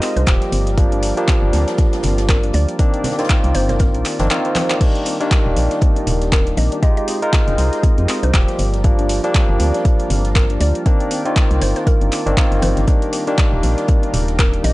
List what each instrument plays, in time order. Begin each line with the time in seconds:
Already playing: tine electric piano G#3 D#4 F4 A#4, analog synth pad G#3 G4 C5 D#5
0.02 synth arpeggio sound C4, clap, closed hi-hat, open hi-hat
0.16 fm bass C2, synth arpeggio sound D4, synth pluck C5, closed hi-hat
0.26 fm bass D#1, tine electric piano F3 G3 A#3 G4, kick, snare, clap, closed hi-hat
0.41 snare, closed hi-hat
0.52 fm bass G1, synth arpeggio sound C4, analog synth pad F4 A#4 D5, closed hi-hat, open hi-hat
0.67 snare, closed hi-hat
0.77 tine electric piano F3 G3 A#3 D4, synth arpeggio sound C4, kick, closed hi-hat
0.92 synth arpeggio sound D4, closed hi-hat
1.03 closed hi-hat, open hi-hat
1.17 tine electric piano F3 G3 A#3 D4, snare, closed hi-hat
1.28 synth arpeggio sound C4, kick, snare, clap, closed hi-hat
1.42 fm bass G1
1.53 fm bass D2, synth arpeggio sound C4, snare, closed hi-hat, open hi-hat
1.68 synth arpeggio sound D4, snare, closed hi-hat
1.78 kick, snare, closed hi-hat
1.93 snare, closed hi-hat
2.03 fm bass G1, synth arpeggio sound C4, snare, closed hi-hat, open hi-hat, low conga
2.18 snare, closed hi-hat
2.29 synth arpeggio sound C4, synth pluck A#4, kick, snare, clap, closed hi-hat
2.43 synth arpeggio sound D4, closed hi-hat
2.53 fm bass D2, synth pluck D5, closed hi-hat, open hi-hat
2.69 closed hi-hat
2.79 tine electric piano D#3 A#3 C4 D4, synth arpeggio sound C4, analog synth pad D4 G4 A#4, kick, closed hi-hat
2.94 closed hi-hat
3.04 synth arpeggio sound C4, snare, closed hi-hat, open hi-hat, low conga
3.12 snare, closed hi-hat
3.18 tine electric piano D#3 A#3 C4 F4, synth arpeggio sound D4, snare, closed hi-hat
3.24 snare, closed hi-hat
3.29 kick, snare, clap, closed hi-hat
3.44 fm bass C2, closed hi-hat
3.55 fm bass G1, synth arpeggio sound C4, synth pluck C5, closed hi-hat, open hi-hat
3.69 synth pluck C5, snare, closed hi-hat, low conga
3.79 synth arpeggio sound C4, synth pluck A#4, kick, snare, closed hi-hat
3.94 fm bass A#1, synth arpeggio sound D4, closed hi-hat
4.05 clap, closed hi-hat, open hi-hat
4.19 fm bass G1, tine electric piano D#3 A#3 C4 D4, synth arpeggio sound C5, snare, closed hi-hat, high conga
4.30 tine electric piano D#3 A#3 C4 F4, synth arpeggio sound C4, clap, closed hi-hat
4.45 synth arpeggio sound C5, closed hi-hat
4.55 synth arpeggio sound C4, synth pluck C5, snare, clap, closed hi-hat, open hi-hat, high conga
4.70 synth arpeggio sound C5, clap, closed hi-hat
4.81 tine electric piano D#3 G3 A#3 D4, synth arpeggio sound C4, analog synth pad F4, kick, closed hi-hat, crash
4.95 closed hi-hat
5.05 synth arpeggio sound C4, closed hi-hat, open hi-hat
5.20 tine electric piano D#3 G3 A#3 D4, synth arpeggio sound D4, snare, closed hi-hat
5.31 kick, snare, clap, closed hi-hat
5.46 fm bass D#1
5.56 fm bass A#1, synth arpeggio sound C4, closed hi-hat, open hi-hat
5.71 snare, closed hi-hat
5.81 synth arpeggio sound C4, kick, closed hi-hat
5.96 synth arpeggio sound D4, closed hi-hat
6.07 fm bass D#1, closed hi-hat, open hi-hat, low conga
6.21 snare, closed hi-hat
6.32 synth arpeggio sound C4, synth pluck A#4, kick, snare, clap, closed hi-hat
6.47 closed hi-hat
6.57 fm bass A#1, synth arpeggio sound C4, synth pluck D#5, closed hi-hat, open hi-hat
6.72 synth arpeggio sound D4, closed hi-hat
6.82 tine electric piano G#3 D#4 F4 G4, analog synth pad G#3 C5 D#5, synth pluck D#5, kick, closed hi-hat
6.97 synth pluck D#5, closed hi-hat
7.08 synth arpeggio sound C4, closed hi-hat, open hi-hat
7.22 tine electric piano G#3 D#4 F4 A#4, closed hi-hat
7.33 synth arpeggio sound C4, kick, snare, clap, closed hi-hat
7.48 fm bass F1, synth arpeggio sound D4, closed hi-hat
7.58 fm bass C2, closed hi-hat, open hi-hat
7.73 snare, closed hi-hat
7.83 synth arpeggio sound C4, kick, closed hi-hat
7.98 fm bass F2, closed hi-hat
8.09 synth arpeggio sound C4, clap, closed hi-hat, open hi-hat
8.23 fm bass C2, synth arpeggio sound D4, synth pluck C5, closed hi-hat
8.33 fm bass D#1, tine electric piano F3 G3 A#3 G4, kick, snare, clap, closed hi-hat
8.48 snare, closed hi-hat
8.59 fm bass G1, synth arpeggio sound C4, analog synth pad F4 A#4 D5, closed hi-hat, open hi-hat
8.74 snare, closed hi-hat
8.84 tine electric piano F3 G3 A#3 D4, synth arpeggio sound C4, kick, closed hi-hat
8.99 synth arpeggio sound D4, closed hi-hat
9.09 closed hi-hat, open hi-hat
9.23 tine electric piano F3 G3 A#3 D4, snare, closed hi-hat
9.35 synth arpeggio sound C4, kick, snare, clap, closed hi-hat
9.49 fm bass G1
9.60 fm bass D2, synth arpeggio sound C4, closed hi-hat, open hi-hat
9.74 synth arpeggio sound D4, snare, closed hi-hat
9.85 kick, closed hi-hat
10.00 closed hi-hat
10.10 fm bass G1, synth arpeggio sound C4, closed hi-hat, open hi-hat, low conga
10.25 snare, closed hi-hat
10.35 synth arpeggio sound C4, synth pluck A#4, kick, snare, clap, closed hi-hat
10.50 synth arpeggio sound D4, closed hi-hat
10.61 fm bass D2, synth pluck D5, closed hi-hat, open hi-hat
10.75 closed hi-hat
10.86 tine electric piano D#3 A#3 C4 D4, synth arpeggio sound C4, analog synth pad D4 G4 D5, kick, closed hi-hat
11.00 closed hi-hat
11.11 synth arpeggio sound C4, closed hi-hat, open hi-hat
11.25 tine electric piano D#3 A#3 C4 F4, synth arpeggio sound D4, closed hi-hat
11.36 kick, snare, clap, closed hi-hat
11.51 fm bass C2, closed hi-hat
11.61 fm bass G1, synth arpeggio sound C4, synth pluck C5, closed hi-hat, open hi-hat
11.76 synth pluck C5, snare, closed hi-hat
11.87 synth arpeggio sound C4, synth pluck A#4, kick, closed hi-hat
12.01 fm bass G1, synth arpeggio sound D4, closed hi-hat
12.12 clap, closed hi-hat, open hi-hat
12.26 fm bass G1, tine electric piano D#3 A#3 C4 D4, closed hi-hat
12.37 tine electric piano D#3 A#3 C4 F4, synth arpeggio sound C4, kick, snare, clap, closed hi-hat
12.52 fm bass G1, snare, closed hi-hat
12.62 fm bass G1, synth arpeggio sound C4, synth pluck C5, closed hi-hat, open hi-hat, high conga
12.77 fm bass G1, synth arpeggio sound D4, snare, closed hi-hat
12.87 tine electric piano D#3 G3 A#3 D4, synth arpeggio sound C4, analog synth pad F4 A#4, kick, closed hi-hat
13.02 closed hi-hat
13.13 synth arpeggio sound C4, closed hi-hat, open hi-hat
13.27 tine electric piano D#3 G3 A#3 D4, synth arpeggio sound D4, snare, closed hi-hat
13.37 kick, snare, clap, closed hi-hat
13.53 fm bass D#1
13.63 fm bass A#1, synth arpeggio sound C4, closed hi-hat, open hi-hat
13.77 snare, closed hi-hat
13.88 synth arpeggio sound C4, kick, closed hi-hat
14.03 synth arpeggio sound D4, closed hi-hat
14.13 fm bass D#1, closed hi-hat, open hi-hat, low conga
14.28 snare, closed hi-hat
14.39 synth arpeggio sound C4, synth pluck A#4, kick, snare, clap, closed hi-hat
14.53 closed hi-hat
14.64 fm bass A#1, synth arpeggio sound C4, synth pluck D#5, closed hi-hat, open hi-hat